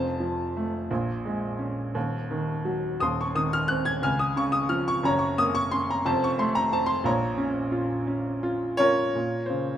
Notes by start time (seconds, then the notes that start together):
Already playing: F1 F2 C5 A5
0.20 F3
0.57 A3
0.90 A#1 A#2
1.25 G#3
1.59 C#4
1.95 D#1 D#2
2.31 D#3
2.65 F#3
3.00 D#1 D#2 C6 D#6
3.21 C#6
3.35 D#3 D#6
3.53 F6
3.68 C4 F#6
3.85 G#6
4.02 C#2 G#5 F6
4.19 D#6
4.36 C#3 C#6
4.52 D#6
4.69 F3 F6
4.88 C#6
5.03 F#1 F#2 C#5 A#5
5.19 C#6
5.37 A#3 D#6
5.55 C#6
5.71 C#4 C6
5.90 A#5
6.05 F1 F2 C5 A5
6.24 C#6
6.38 A3 C6
6.55 A#5
6.72 C4 A5
6.86 C6
7.04 A#1 A#2 C#5 A#5
7.38 C#4
7.72 F4
8.07 C#4
8.43 F4
8.77 C#4 F4 A#4 C#5
9.15 A#2
9.46 C#3 C5